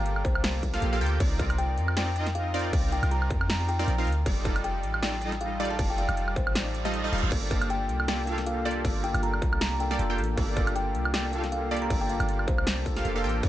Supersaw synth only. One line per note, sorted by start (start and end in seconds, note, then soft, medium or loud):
0.00 0.71 A#3 medium
0.00 0.71 F4 medium
0.00 0.71 G4 medium
0.00 0.71 A4 medium
0.00 0.71 D5 loud
0.74 0.90 A#3 medium
0.74 0.90 F4 medium
0.74 0.90 G4 medium
0.74 0.90 A4 medium
0.74 0.90 F5 loud
0.93 0.99 A#3 medium
0.93 0.99 F4 medium
0.93 0.99 G4 medium
0.93 0.99 A4 medium
0.93 0.99 F5 medium
1.01 1.18 A#3 medium
1.01 1.18 F4 medium
1.01 1.18 G4 medium
1.01 1.18 A4 medium
1.01 1.18 G5 loud
1.20 1.95 C4 medium
1.20 1.95 D#4 medium
1.20 1.95 F4 medium
1.20 1.95 A#4 medium
1.20 1.95 D5 loud
1.97 2.09 C4 medium
1.97 2.09 D#4 medium
1.97 2.09 F4 medium
1.97 2.09 A#4 medium
1.97 2.09 D5 loud
2.16 2.52 C4 medium
2.16 2.52 D#4 medium
2.16 2.52 F4 medium
2.16 2.52 A#4 medium
2.16 2.52 D#5 loud
2.54 2.71 C4 loud
2.54 2.71 D#4 medium
2.54 2.71 F4 medium
2.54 2.71 A#4 medium
2.54 2.71 D5 loud
2.73 3.77 D5 medium
3.79 3.90 C4 loud
3.79 3.90 D#4 medium
3.79 3.90 F4 medium
3.79 3.90 A#4 medium
3.79 3.90 D5 loud
3.98 4.09 C4 medium
3.98 4.09 D#4 medium
3.98 4.09 F4 medium
3.98 4.09 A#4 medium
3.98 4.09 F5 medium
4.26 5.00 G3 medium
4.26 5.00 D#4 medium
4.26 5.00 F4 medium
4.26 5.00 A4 medium
4.26 5.00 D5 loud
5.02 5.15 G3 medium
5.02 5.15 D#4 medium
5.02 5.15 F4 medium
5.02 5.15 A4 medium
5.02 5.15 D5 loud
5.21 5.58 G3 loud
5.21 5.58 D#4 medium
5.21 5.58 F4 medium
5.21 5.58 A4 medium
5.21 5.58 D#5 loud
5.60 5.77 G3 loud
5.60 5.77 D#4 medium
5.60 5.77 F4 medium
5.60 5.77 A4 medium
5.60 5.77 D5 loud
5.79 6.83 D#4 medium
6.85 7.02 G3 medium
6.85 7.02 D#4 medium
6.85 7.02 F4 medium
6.85 7.02 A4 medium
6.85 7.02 D#5 loud
7.04 7.11 G3 medium
7.04 7.11 D#4 medium
7.04 7.11 F4 medium
7.04 7.11 A4 medium
7.04 7.11 D#5 medium
7.13 7.30 G3 medium
7.13 7.30 D#4 medium
7.13 7.30 F4 medium
7.13 7.30 A4 medium
7.13 7.30 F5 loud
7.32 8.06 A#3 medium
7.32 8.06 F4 medium
7.32 8.06 G4 medium
7.32 8.06 A4 medium
7.32 8.06 D5 loud
8.08 8.21 A#3 medium
8.08 8.21 F4 medium
8.08 8.21 G4 medium
8.08 8.21 A4 medium
8.08 8.21 D5 loud
8.27 8.63 A#3 loud
8.27 8.64 F4 medium
8.27 8.63 G4 medium
8.27 8.63 A4 medium
8.27 8.63 F5 loud
8.66 8.83 A#3 loud
8.66 8.83 F4 medium
8.66 8.83 G4 medium
8.66 8.83 A4 medium
8.66 8.83 D5 loud
8.85 9.89 A#3 medium
8.85 9.89 F4 medium
8.85 9.89 G4 medium
8.85 9.89 A4 medium
8.85 9.89 D5 medium
9.91 10.02 A#3 loud
9.91 10.02 F4 medium
9.91 10.02 G4 medium
9.91 10.02 A4 medium
9.91 10.02 D5 loud
10.10 10.21 A#3 medium
10.10 10.21 F4 medium
10.10 10.21 G4 medium
10.10 10.21 A4 medium
10.10 10.21 G5 medium
10.37 11.12 A#3 medium
10.37 11.12 F4 medium
10.37 11.12 G4 medium
10.37 11.12 A4 medium
10.37 11.12 D5 loud
11.14 11.27 A#3 medium
11.14 11.26 F4 medium
11.14 11.26 G4 medium
11.14 11.27 A4 medium
11.14 11.27 D5 loud
11.33 11.69 A#3 medium
11.33 11.69 F4 medium
11.33 11.69 G4 medium
11.33 11.69 A4 medium
11.33 11.69 F5 loud
11.71 11.88 A#3 loud
11.71 11.88 F4 medium
11.71 11.88 G4 medium
11.71 11.88 A4 medium
11.71 11.88 D5 loud
11.90 12.94 A#3 medium
11.90 12.94 F4 medium
11.90 12.94 G4 medium
11.90 12.94 A4 medium
11.90 12.94 D5 loud
12.96 13.13 A#3 loud
12.96 13.13 F4 medium
12.96 13.13 G4 medium
12.96 13.13 A4 medium
12.96 13.13 F5 loud
13.16 13.22 A#3 medium
13.16 13.22 F4 medium
13.16 13.22 G4 medium
13.16 13.22 A4 medium
13.16 13.22 F5 medium
13.24 13.41 A#3 medium
13.24 13.41 F4 medium
13.24 13.41 G4 medium
13.24 13.41 A4 medium
13.24 13.41 G5 loud
13.43 13.49 C4 medium
13.43 13.49 D#4 medium
13.43 13.49 F4 medium
13.43 13.49 D5 loud